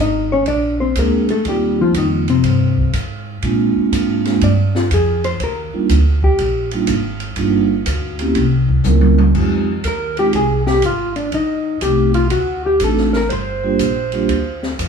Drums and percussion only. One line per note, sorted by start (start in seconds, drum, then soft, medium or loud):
0.46 kick soft
0.46 ride medium
0.96 kick soft
0.96 hi-hat pedal medium
0.96 ride medium
1.29 ride soft
1.45 kick soft
1.45 ride medium
1.94 kick soft
1.94 hi-hat pedal medium
1.94 ride medium
2.28 ride soft
2.44 kick soft
2.44 ride medium
2.78 kick medium
2.93 kick soft
2.93 hi-hat pedal medium
2.93 ride medium
3.42 kick soft
3.42 ride medium
3.92 kick soft
3.92 hi-hat pedal medium
3.92 ride medium
4.25 snare soft
4.25 ride soft
4.41 kick soft
4.41 ride medium
4.75 snare soft
4.91 kick soft
4.91 hi-hat pedal medium
4.91 ride medium
5.24 ride soft
5.40 kick soft
5.40 ride medium
5.89 kick soft
5.89 hi-hat pedal medium
5.89 ride medium
6.23 kick medium
6.39 kick soft
6.39 ride medium
6.71 ride soft
6.87 kick soft
6.87 hi-hat pedal medium
6.87 ride medium
7.20 ride soft
7.36 kick soft
7.36 ride medium
7.86 kick soft
7.86 hi-hat pedal medium
7.86 ride medium
8.19 ride medium
8.35 kick soft
8.35 ride medium
8.69 kick medium
8.84 hi-hat pedal medium
8.84 high tom medium
9.01 high tom medium
9.18 high tom medium
9.35 kick medium
9.35 crash medium
9.84 kick soft
9.84 hi-hat pedal soft
9.84 ride medium
10.17 ride soft
10.33 kick soft
10.33 ride medium
10.67 snare medium
10.82 kick soft
10.82 hi-hat pedal medium
10.82 ride medium
11.16 ride soft
11.32 kick soft
11.32 ride medium
11.81 kick soft
11.81 hi-hat pedal medium
11.81 ride medium
12.14 ride soft
12.30 kick soft
12.30 ride medium
12.80 kick soft
12.80 hi-hat pedal medium
12.80 ride medium
12.97 snare soft
13.13 snare soft
13.30 kick soft
13.30 ride medium
13.79 kick soft
13.79 hi-hat pedal medium
13.79 ride medium
14.12 ride soft
14.29 kick soft
14.29 ride medium
14.63 snare soft
14.79 kick soft
14.79 hi-hat pedal medium
14.79 ride medium